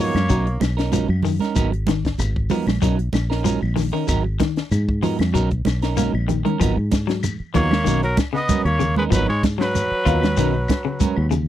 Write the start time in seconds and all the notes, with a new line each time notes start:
Already playing: G#2
0.00 F3 F#3 A#3 B3 D#4 A#4 C#5
0.15 F#2, muted clean electric guitar stroke, snare, closed hi-hat, high conga, claves
0.29 B1 F#3 C#4 D#4 A#4, kick, closed hi-hat, high conga, shekere
0.46 muted clean electric guitar stroke, closed hi-hat
0.60 B1, muted clean electric guitar stroke, snare, closed hi-hat, high conga, claves, shekere
0.77 C#4 D#4 A#4, snare, closed hi-hat
0.92 F3 F#3 C#4 D#4 A#4, closed hi-hat, high conga, shekere
1.09 F#2, muted clean electric guitar stroke, claves
1.23 D#3, muted clean electric guitar stroke, open hi-hat, low conga, shekere
1.39 C#4 D#4 A#4, snare, closed hi-hat, high conga
1.55 G#1 F#3 B3 D#4 A#4, kick, closed hi-hat, high conga, claves, shekere
1.72 muted clean electric guitar stroke, closed hi-hat
1.87 D#3, muted clean electric guitar stroke, snare, closed hi-hat, high conga, shekere
2.05 kick, snare, closed hi-hat
2.18 G#1, muted clean electric guitar stroke, closed hi-hat, high conga, low conga, claves, shekere
2.36 kick
2.50 F3 F#3 B3 D#4 A#4, open hi-hat, high conga, low conga, shekere
2.67 A#1, muted clean electric guitar stroke, snare, high conga, claves
2.81 B1 F#3 C#4 D#4 A#4, kick, closed hi-hat, high conga, shekere
2.98 muted clean electric guitar stroke, closed hi-hat
3.13 A#1, muted clean electric guitar stroke, snare, closed hi-hat, high conga, claves, shekere
3.30 C#4 D#4 A#4, snare
3.44 F3 F#3 C#4 D#4 A#4, closed hi-hat, high conga, shekere
3.61 A#1, muted clean electric guitar stroke, claves
3.76 D#3, muted clean electric guitar stroke, snare, open hi-hat, low conga, shekere
3.93 D#3 C#4 D#4 A#4
4.07 G#1 F#3 D#4 A#4, muted clean electric guitar stroke, kick, closed hi-hat, high conga, claves, shekere
4.24 muted clean electric guitar stroke
4.39 D#3, muted clean electric guitar stroke, kick, snare, closed hi-hat, high conga, shekere
4.56 snare, closed hi-hat
4.71 G#2, muted clean electric guitar stroke, closed hi-hat, high conga, low conga, claves, shekere
4.89 kick
5.02 F3 F#3 B3 D#4 A#4, open hi-hat, low conga, shekere
5.19 F2, muted clean electric guitar stroke, snare, closed hi-hat, high conga, claves
5.33 B1 F#3 C#4 D#4 A#4, kick, closed hi-hat, high conga, shekere
5.51 muted clean electric guitar stroke, kick, closed hi-hat
5.65 B1, muted clean electric guitar stroke, snare, closed hi-hat, high conga, claves, shekere
5.82 C#4 D#4 A#4, snare, closed hi-hat
5.97 F#3 A#3 C#4 D#4 A#4, snare, closed hi-hat, high conga, shekere
6.14 A#1, muted clean electric guitar stroke, claves
6.28 D#3, muted clean electric guitar stroke, closed hi-hat, low conga, shekere
6.45 D#3 C#4 A#4, muted clean electric guitar stroke, closed hi-hat, high conga
6.60 G#1 F3 F#3 B3 D#4 A#4, kick, closed hi-hat, high conga, claves, shekere
6.77 G#2, muted clean electric guitar stroke
6.92 muted clean electric guitar stroke, kick, snare, closed hi-hat, high conga, shekere
7.07 F#3, snare, closed hi-hat
7.23 muted clean electric guitar stroke, closed hi-hat, high conga, low conga, claves, shekere
7.40 muted fingered electric bass stroke
7.54 D#2 F3 F#3 A#3 B3 D#4 A#4 C#5, kick, closed hi-hat, low conga, shekere
7.71 muted clean electric guitar stroke, snare, high conga, claves
7.84 B1 D#3 F#3 C#4 D#4 A#4, closed hi-hat, high conga, shekere
8.03 F#3 A#4, muted clean electric guitar stroke, closed hi-hat
8.17 muted clean electric guitar stroke, kick, snare, closed hi-hat, high conga, claves, shekere
8.33 C#3 B3 D#5, snare
8.49 F#3 C#4 A#4, kick, closed hi-hat, high conga, shekere
8.64 D#2 A#3 C#5, muted clean electric guitar stroke, closed hi-hat, claves
8.79 C#3, muted clean electric guitar stroke, closed hi-hat, low conga, shekere
8.96 G#3 C#4 D#4 A#4 B4, high conga
9.10 G#1 F3 F#3 B3 D#4 A#4 B4, kick, closed hi-hat, high conga, claves, shekere
9.28 G#2 G#3 C#5, muted clean electric guitar stroke
9.43 muted clean electric guitar stroke, kick, snare, closed hi-hat, high conga, shekere
9.58 F#3 B4, snare
9.75 muted clean electric guitar stroke, closed hi-hat, high conga, low conga, claves, shekere
9.91 muted fingered electric bass stroke
10.05 D#2 F#3 B3 D#4 F4 A#4, kick, closed hi-hat, low conga, shekere
10.22 muted clean electric guitar stroke, snare, closed hi-hat, high conga, claves
10.37 B1 D#3 F#3 C#4 D#4 A#4, closed hi-hat, shekere
10.54 muted clean electric guitar stroke
10.68 muted clean electric guitar stroke, kick, snare, closed hi-hat, high conga, claves, shekere
10.85 C#3
11.00 F#3 C#4 A#4, kick, closed hi-hat, high conga, shekere
11.17 D#2, muted clean electric guitar stroke, claves
11.31 C#3, muted clean electric guitar stroke, closed hi-hat, low conga, shekere